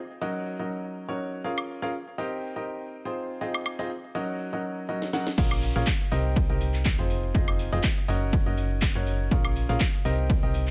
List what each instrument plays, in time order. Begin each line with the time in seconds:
0.21 grand piano F#3 C#4 D#4 F#4 A#4 D#5
0.59 grand piano F#3 C#4 D#4 F#4 A#4 D#5
1.08 grand piano F#3 C#4 D#4 F#4 A#4 C#5
1.44 grand piano C#4 F4 G#4 A#4 F5
1.58 high woodblock
1.82 grand piano C#4 F4 G#4 A#4 F5
2.18 grand piano C4 D#4 G4 A#4 D#5
2.56 grand piano C4 D#4 G4 A#4 D#5
3.05 grand piano C4 D#4 F4 G#4 C5
3.41 grand piano C4 D#4 F4 G#4 D#5
3.54 high woodblock
3.66 high woodblock
3.79 grand piano C4 D#4 F4 G#4 D#5
4.15 grand piano F#3 C#4 D#4 F#4 A#4 D#5
4.53 grand piano F#3 C#4 D#4 F#4 A#4 D#5
4.89 grand piano F#3 C#4 D#4 F#4 A#4 D#5
5.02 snare
5.13 grand piano F#3 C#4 D#4 F#4 A#4 F#5, snare
5.27 snare
5.38 fm bass A#1, grand piano C#4 F4 G#4 A#4 F5, kick, closed hi-hat, crash, ride
5.51 closed hi-hat, high woodblock
5.62 open hi-hat
5.76 fm bass A#1, grand piano C#4 F4 G#4 A#4 F5
5.87 kick, clap, closed hi-hat, ride
6.00 closed hi-hat
6.12 fm bass C2, grand piano C4 D#4 G4 A#4 D#5, open hi-hat
6.25 closed hi-hat
6.36 kick, closed hi-hat, ride
6.50 fm bass C2, grand piano C4 D#4 G4 A#4 D#5, closed hi-hat
6.61 open hi-hat
6.74 clap, closed hi-hat
6.85 kick, clap, closed hi-hat, ride
6.99 fm bass F1, grand piano C4 D#4 F4 G#4 C5, closed hi-hat
7.10 open hi-hat
7.23 closed hi-hat
7.35 fm bass F1, grand piano C4 D#4 F4 G#4 D#5, kick, closed hi-hat, ride
7.48 closed hi-hat, high woodblock
7.59 open hi-hat
7.72 fm bass F1, grand piano C4 D#4 F4 G#4 D#5, closed hi-hat
7.83 kick, clap, closed hi-hat, ride
7.97 closed hi-hat
8.08 fm bass F#1, grand piano C#4 D#4 F#4 A#4 D#5, open hi-hat
8.22 closed hi-hat
8.33 kick, closed hi-hat, ride
8.46 fm bass F#1, grand piano C#4 D#4 F#4 A#4 D#5, closed hi-hat
8.58 open hi-hat
8.71 closed hi-hat
8.82 kick, clap, closed hi-hat, ride
8.95 fm bass F#1, grand piano C#4 D#4 F#4 A#4 C#5, closed hi-hat
9.07 open hi-hat
9.20 closed hi-hat
9.31 fm bass A#1, grand piano C#4 F4 G#4 A#4 F5, kick, closed hi-hat, ride
9.45 closed hi-hat, high woodblock
9.56 open hi-hat
9.69 fm bass A#1, grand piano C#4 F4 G#4 A#4 F5, closed hi-hat
9.80 kick, clap, closed hi-hat, ride
9.94 closed hi-hat
10.05 fm bass C2, grand piano C4 D#4 G4 A#4 D#5, open hi-hat
10.18 closed hi-hat
10.30 kick, closed hi-hat, ride
10.43 fm bass C2, grand piano C4 D#4 G4 A#4 D#5, closed hi-hat
10.54 open hi-hat
10.67 clap, closed hi-hat